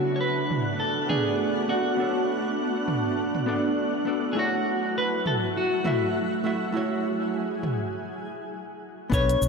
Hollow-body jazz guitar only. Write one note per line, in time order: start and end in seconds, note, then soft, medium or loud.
0.00 1.06 B3 medium
0.00 1.07 D4 medium
0.00 1.08 A4 medium
0.00 1.09 C#5 medium
1.09 1.67 A3 medium
1.09 1.66 B3 medium
1.09 1.66 D4 medium
1.09 1.67 D5 medium
1.68 1.95 B3 medium
1.68 1.96 D4 medium
1.68 1.96 A4 medium
1.68 1.97 D5 medium
1.97 3.44 B3 medium
1.97 3.44 D4 medium
1.97 3.45 A4 medium
2.01 3.46 C#5 medium
3.46 4.03 B3 medium
3.46 4.04 D4 medium
3.46 4.04 A4 medium
3.46 4.04 D5 medium
4.05 4.33 B3 medium
4.05 4.34 D4 medium
4.05 4.34 A4 medium
4.05 4.34 D5 medium
4.35 5.81 A3 medium
4.35 5.82 E4 medium
4.35 5.83 F#4 medium
4.39 5.83 C#5 medium
5.84 6.41 A3 medium
5.84 6.42 E4 medium
5.84 6.42 F#4 medium
5.84 6.43 E5 loud
6.44 6.71 A3 medium
6.44 6.71 E4 medium
6.44 6.72 F#4 medium
6.44 6.72 E5 medium
6.72 7.92 A3 medium
6.72 7.93 E4 medium
6.72 7.94 F#4 medium
6.77 7.94 C#5 medium
9.10 9.48 B3 medium
9.10 9.48 D4 medium
9.10 9.48 A4 medium
9.14 9.48 B4 loud